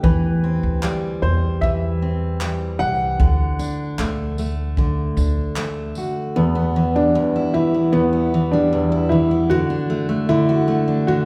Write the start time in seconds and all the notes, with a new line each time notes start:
Already playing: A3 D4 G4
0.03 E2 E3 B4, kick
0.44 C4
0.63 D2
0.83 G3, clap
1.22 E2 G3 C5
1.61 E3 E5, kick
2.02 C4
2.41 G3, clap
2.79 C2 G4 F#5
3.20 D2 D3, kick
3.59 D4, tambourine
3.99 D2 A3, clap
4.38 A3, tambourine
4.77 D3, kick
5.17 D2 D4, tambourine
5.56 A3, clap
5.95 F#4, tambourine
6.36 E2 B3
6.55 B3
6.76 E3
6.96 G3 D4
7.15 E2
7.36 E4
7.54 E3 E4
7.74 B3
7.93 E2 B3
8.13 B3
8.34 E3
8.51 G3 D4
8.73 E2
8.92 E4
9.09 E3 E4
9.31 B3
9.50 D3 F#4
9.70 D4
9.90 A3
10.09 A3
10.29 D3 E4
10.49 F#4
10.68 A3
10.88 D4
11.07 D3 F#4